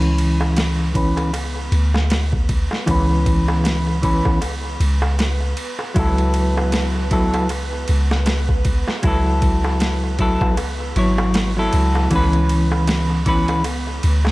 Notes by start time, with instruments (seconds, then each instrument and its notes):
Already playing: 808-style bass C#2, clean electric guitar E3 C#4 B4, synth texture B3 B4
0.01 ride, darbuka tek
0.18 ride
0.41 darbuka tek
0.56 snare, ride, darbuka tek
0.79 darbuka tek
0.94 clean electric guitar E3 C#4 B4, kick, ride
1.17 ride, darbuka tek
1.34 ride, darbuka tek
1.56 darbuka tek
1.72 808-style bass D2, ride
1.94 snare, darbuka tek
2.10 snare, ride, darbuka tek
2.32 kick, darbuka tek
2.49 kick, ride
2.71 snare, darbuka tek
2.86 808-style bass C#2, clean electric guitar E3 C#4, kick, ride, darbuka tek
2.91 clean electric guitar B4
3.10 darbuka tek
3.26 kick, ride
3.48 darbuka tek
3.64 snare, ride, darbuka tek
3.87 darbuka tek
4.02 clean electric guitar E3 C#4 B4, kick, ride
4.25 kick, darbuka tek
4.41 ride, darbuka tek
4.65 darbuka tek
4.80 808-style bass C#2, ride
5.02 darbuka tek
5.19 snare, ride, darbuka tek
5.41 darbuka tek
5.57 ride
5.79 darbuka tek
5.94 808-style bass C#2, clean electric guitar F#3 E4, kick, ride, darbuka tek
5.99 clean electric guitar A4
6.18 ride, darbuka tek
6.34 ride
6.57 darbuka tek
6.72 snare, ride, darbuka tek
6.95 darbuka tek
7.11 clean electric guitar F#3 E4 A4, kick, ride
7.34 ride, darbuka tek
7.49 ride, darbuka tek
7.73 darbuka tek
7.88 808-style bass C#2, ride
8.11 snare, darbuka tek
8.26 snare, ride, darbuka tek
8.49 kick, darbuka tek
8.65 kick, ride
8.88 snare, darbuka tek
9.02 808-style bass C#2, clean electric guitar F#3 E4, kick, ride, darbuka tek
9.07 clean electric guitar A4
9.26 darbuka tek
9.42 kick, ride
9.64 darbuka tek
9.80 snare, ride, darbuka tek
10.04 darbuka tek
10.19 clean electric guitar F#3 E4 A4, kick, ride
10.41 kick, darbuka tek
10.57 ride, darbuka tek
10.80 darbuka tek
10.96 808-style bass G#1, clean electric guitar F#3 E4 C#5, ride
11.18 darbuka tek
11.34 snare, ride, darbuka tek
11.57 clean electric guitar F#3 E4 A4, darbuka tek
11.73 808-style bass C#2, ride
11.95 darbuka tek
12.10 808-style bass C#2, clean electric guitar E3 C#4, kick, ride, darbuka tek
12.16 clean electric guitar B4
12.33 ride, darbuka tek
12.49 ride
12.72 darbuka tek
12.87 snare, ride, darbuka tek
13.10 darbuka tek
13.26 clean electric guitar E3 C#4 B4, kick, ride
13.48 ride, darbuka tek
13.64 ride, darbuka tek
13.87 darbuka tek
14.03 808-style bass D2, ride
14.25 snare, darbuka tek